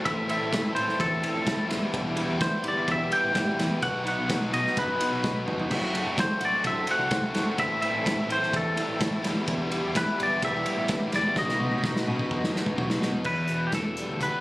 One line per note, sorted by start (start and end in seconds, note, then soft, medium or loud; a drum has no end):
0.00 0.51 A2 medium
0.00 1.67 A4 medium
0.00 1.67 C6 medium
0.04 0.37 A1 loud
0.04 0.50 E3 medium
0.04 0.31 A3 medium
0.04 0.30 C4 loud
0.04 0.30 E4 loud
0.04 0.29 E5 loud
0.04 3.78 E5 medium
0.04 kick loud
0.04 ride loud
0.29 0.51 A3 medium
0.29 0.51 C4 medium
0.29 0.53 E4 medium
0.29 0.59 A4 loud
0.29 0.73 E5 loud
0.29 ride medium
0.42 0.73 A1 medium
0.51 1.46 E3 medium
0.51 0.75 A3 medium
0.51 0.74 C4 medium
0.51 0.74 E4 medium
0.51 kick loud
0.51 snare loud
0.51 ride loud
0.74 0.87 A2 medium
0.74 1.46 A3 medium
0.74 1.47 C4 medium
0.74 1.47 E4 medium
0.74 1.06 A4 medium
0.74 0.99 C5 medium
0.74 ride medium
0.89 snare soft
1.00 1.20 E2 loud
1.00 1.66 A4 medium
1.00 kick loud
1.00 ride loud
1.22 1.53 C4 medium
1.22 1.53 E4 loud
1.22 1.53 A4 loud
1.22 ride medium
1.34 1.65 F1 medium
1.46 1.68 A2 loud
1.46 1.68 E3 loud
1.46 1.69 A3 loud
1.46 1.69 C4 loud
1.46 1.67 E4 loud
1.46 kick loud
1.46 snare loud
1.46 ride loud
1.69 1.80 E1 medium
1.69 1.92 E2 medium
1.69 1.92 B2 medium
1.69 1.93 E3 medium
1.69 1.93 G3 medium
1.69 1.95 B3 medium
1.69 1.93 E4 medium
1.69 3.80 G4 medium
1.69 3.80 D6 medium
1.69 snare medium
1.69 ride medium
1.93 2.25 E1 loud
1.93 2.40 E2 medium
1.93 2.40 B2 medium
1.93 2.18 E3 medium
1.93 2.18 G3 medium
1.93 2.17 B3 loud
1.93 2.16 E4 medium
1.93 kick loud
1.93 ride loud
2.17 2.39 E3 medium
2.17 2.40 G3 medium
2.17 2.41 B3 medium
2.17 2.41 E4 medium
2.17 ride medium
2.28 2.49 E2 medium
2.40 2.63 E3 medium
2.40 2.63 G3 medium
2.40 2.63 B3 medium
2.40 2.62 E4 loud
2.40 2.65 C5 medium
2.40 kick loud
2.40 snare loud
2.40 ride loud
2.63 2.85 G1 medium
2.63 3.32 E3 medium
2.63 3.32 G3 medium
2.63 3.33 B3 medium
2.63 3.33 E4 medium
2.63 ride medium
2.68 2.90 D5 medium
2.88 3.09 E1 loud
2.88 3.12 E5 loud
2.88 kick loud
2.88 ride medium
3.11 3.42 G3 medium
3.11 3.42 B3 medium
3.11 3.41 E4 loud
3.11 3.82 G5 loud
3.11 ride medium
3.24 3.55 A1 medium
3.32 3.79 E2 medium
3.32 3.79 B2 loud
3.32 3.57 E3 loud
3.32 3.56 G3 loud
3.32 3.56 B3 loud
3.32 3.55 E4 loud
3.32 kick loud
3.32 snare loud
3.32 ride loud
3.57 3.69 E2 loud
3.57 3.80 E3 medium
3.57 3.80 G3 medium
3.57 3.80 B3 medium
3.57 3.79 E4 medium
3.57 snare medium
3.57 ride medium
3.81 4.13 B1 loud
3.81 4.28 B2 medium
3.81 4.28 F#3 medium
3.81 4.04 B3 loud
3.81 4.04 D#4 medium
3.81 4.04 F#4 loud
3.81 5.69 B4 medium
3.81 7.56 F#5 medium
3.81 4.04 F#5 loud
3.81 5.69 D#6 medium
3.81 kick loud
3.81 ride loud
4.04 4.36 F#3 medium
4.04 4.28 B3 medium
4.04 4.29 D#4 medium
4.04 4.30 F#4 medium
4.04 ride medium
4.08 4.53 F#5 medium
4.18 4.49 B1 medium
4.28 5.23 F#3 medium
4.28 4.53 B3 medium
4.28 4.52 D#4 medium
4.28 4.51 F#4 medium
4.28 kick loud
4.28 snare loud
4.28 ride loud
4.52 4.63 B2 medium
4.52 4.84 F#3 medium
4.52 5.23 B3 medium
4.52 5.23 D#4 medium
4.52 5.24 F#4 medium
4.52 4.77 D#5 medium
4.52 ride medium
4.67 snare soft
4.77 4.97 F#2 loud
4.77 5.44 B4 medium
4.77 kick loud
4.77 ride loud
4.99 5.30 F#3 medium
4.99 5.30 B3 medium
4.99 5.30 D#4 medium
4.99 ride medium
5.12 5.43 B1 medium
5.23 5.69 B2 loud
5.23 5.69 F#3 loud
5.23 5.47 B3 loud
5.23 5.46 D#4 loud
5.23 5.45 F#4 loud
5.23 kick loud
5.23 snare medium
5.46 5.57 G1 medium
5.46 5.70 F#3 medium
5.46 5.70 B3 medium
5.46 5.69 D#4 medium
5.46 5.69 F#4 medium
5.46 mid tom medium
5.59 floor tom medium
5.70 6.03 F#1 loud
5.70 6.16 F#3 loud
5.70 5.95 A3 loud
5.70 5.94 C4 medium
5.70 5.91 F#4 medium
5.70 9.21 A4 medium
5.70 9.21 C6 medium
5.70 kick loud
5.70 crash loud
5.92 6.24 F#3 medium
5.92 6.17 A3 medium
5.92 6.19 C4 medium
5.92 6.18 F#4 medium
5.92 ride medium
6.06 6.27 F#2 medium
6.17 6.64 F#3 medium
6.17 6.42 A3 medium
6.17 6.41 C4 medium
6.17 6.39 F#4 medium
6.17 6.43 C5 medium
6.17 kick loud
6.17 snare loud
6.17 ride loud
6.40 6.62 A1 medium
6.40 6.71 F#3 medium
6.40 7.10 A3 medium
6.40 7.11 C4 medium
6.40 7.12 F#4 medium
6.40 ride medium
6.45 6.67 D5 medium
6.64 6.86 F#1 medium
6.64 6.90 E5 loud
6.64 kick loud
6.64 ride loud
6.87 7.19 F#3 medium
6.87 7.19 A3 medium
6.87 7.19 C4 loud
6.87 7.18 F#4 medium
6.87 ride medium
6.91 7.57 F#5 loud
6.99 7.31 C2 medium
7.10 7.57 F#3 loud
7.10 7.36 A3 loud
7.10 7.35 C4 loud
7.10 7.33 F#4 loud
7.10 kick loud
7.10 snare loud
7.10 ride medium
7.34 7.46 F#2 medium
7.34 7.59 F#3 medium
7.34 7.57 A3 medium
7.34 7.57 C4 medium
7.34 7.57 F#4 medium
7.34 snare medium
7.34 ride medium
7.57 7.90 A1 loud
7.57 8.05 A2 loud
7.57 8.03 E3 loud
7.57 7.82 A3 loud
7.57 7.81 C4 loud
7.57 7.80 E4 medium
7.57 11.32 E5 medium
7.57 7.80 E5 loud
7.57 kick loud
7.57 ride loud
7.81 8.13 E3 medium
7.81 8.03 A3 medium
7.81 8.03 C4 medium
7.81 8.05 E4 medium
7.81 8.31 E5 loud
7.81 ride medium
7.94 8.26 A1 medium
8.03 8.99 E3 medium
8.03 8.29 A3 medium
8.03 8.28 C4 medium
8.03 8.28 E4 medium
8.03 kick loud
8.03 ride loud
8.08 snare loud
8.28 8.39 A2 medium
8.28 8.61 E3 medium
8.28 8.99 A3 medium
8.28 8.99 C4 medium
8.28 9.00 E4 medium
8.28 ride medium
8.32 8.55 C5 medium
8.43 snare soft
8.53 8.74 E2 medium
8.53 9.22 A4 medium
8.53 kick loud
8.53 ride loud
8.76 9.08 E3 medium
8.76 9.08 C4 medium
8.76 9.07 E4 loud
8.76 ride medium
8.88 9.20 A1 medium
8.98 9.22 A2 loud
8.98 9.22 E3 loud
8.98 9.22 A3 loud
8.98 9.23 C4 loud
8.98 9.22 E4 loud
8.98 kick loud
8.98 snare loud
8.98 ride loud
9.23 9.35 E1 medium
9.23 9.46 E2 medium
9.23 9.46 B2 medium
9.23 9.47 E3 medium
9.23 9.47 G3 medium
9.23 9.49 B3 medium
9.23 9.48 E4 medium
9.23 11.35 G4 medium
9.23 11.34 D6 medium
9.23 snare medium
9.23 ride medium
9.47 9.79 E1 loud
9.47 9.95 E2 medium
9.47 9.95 B2 loud
9.47 9.73 E3 loud
9.47 9.71 G3 loud
9.47 9.72 B3 loud
9.47 9.70 E4 loud
9.47 kick loud
9.47 ride loud
9.72 9.92 E3 medium
9.72 9.94 G3 medium
9.72 9.95 B3 medium
9.72 9.95 E4 medium
9.72 ride medium
9.83 10.04 E2 medium
9.93 10.20 E3 medium
9.93 10.19 G3 medium
9.93 10.19 B3 medium
9.93 10.17 E4 medium
9.93 10.20 B4 medium
9.93 kick loud
9.93 snare loud
9.93 ride loud
10.18 10.40 G1 medium
10.18 10.89 E3 medium
10.18 10.89 G3 medium
10.18 10.90 B3 medium
10.18 10.90 E4 medium
10.18 ride medium
10.23 10.44 D5 medium
10.42 10.64 E1 loud
10.42 11.10 E5 loud
10.42 kick loud
10.42 ride loud
10.65 10.97 G3 medium
10.65 10.96 B3 medium
10.65 10.96 E4 medium
10.65 ride medium
10.76 11.09 A1 medium
10.88 11.35 E2 loud
10.88 11.35 B2 loud
10.88 11.14 E3 medium
10.88 11.13 G3 loud
10.88 11.13 B3 loud
10.88 11.12 E4 loud
10.88 kick loud
10.88 snare loud
10.88 ride medium
11.12 11.23 E2 loud
11.12 11.36 E3 medium
11.12 11.36 G3 medium
11.12 11.37 B3 medium
11.12 11.35 E4 medium
11.12 11.38 D5 loud
11.12 snare medium
11.12 ride medium
11.35 11.68 B1 medium
11.35 11.83 B2 loud
11.35 11.80 F#3 loud
11.35 11.59 B3 loud
11.35 11.58 D#4 loud
11.35 13.23 F#4 medium
11.35 11.58 F#4 loud
11.35 13.23 D#5 medium
11.35 12.99 D#5 medium
11.35 13.23 B5 loud
11.35 kick loud
11.35 snare medium
11.49 snare medium
11.59 11.91 F#3 medium
11.59 11.81 B3 medium
11.59 11.82 D#4 medium
11.59 11.82 F#4 medium
11.59 high tom medium
11.71 12.03 B1 medium
11.71 high tom medium
11.82 12.30 F#3 medium
11.82 12.06 B3 medium
11.82 12.06 D#4 medium
11.82 12.05 F#4 medium
11.82 kick loud
11.82 snare medium
11.97 snare medium
12.06 12.18 B2 medium
12.06 12.38 F#3 medium
12.06 12.76 B3 medium
12.06 12.76 D#4 medium
12.06 12.77 F#4 medium
12.06 mid tom medium
12.19 kick medium
12.31 12.52 F#2 loud
12.31 kick loud
12.31 mid tom medium
12.44 snare medium
12.54 12.85 F#3 medium
12.54 12.85 B3 medium
12.54 12.85 D#4 medium
12.54 snare medium
12.66 12.98 B1 medium
12.66 kick medium
12.76 13.23 B2 medium
12.76 13.23 F#3 medium
12.76 13.01 B3 loud
12.76 13.00 D#4 loud
12.76 12.99 F#4 loud
12.76 kick loud
12.76 floor tom loud
12.90 snare medium
13.00 13.13 B1 medium
13.00 13.26 F#3 medium
13.00 13.24 B3 medium
13.00 13.24 D#4 medium
13.00 13.23 F#4 medium
13.00 snare loud
13.13 floor tom medium
13.24 14.40 E2 medium
13.24 13.67 E2 medium
13.24 13.67 B4 medium
13.24 kick loud
13.24 crash medium
13.48 14.40 B2 medium
13.48 closed hi-hat soft
13.67 13.73 G4 medium
13.72 14.04 E2 medium
13.72 14.40 E3 medium
13.72 14.22 A4 medium
13.72 kick loud
13.72 snare loud
13.72 closed hi-hat medium
13.97 14.40 G3 medium
13.97 closed hi-hat medium
14.09 14.30 D2 medium
14.21 14.40 B3 medium
14.21 14.40 B4 medium
14.21 kick medium
14.21 closed hi-hat medium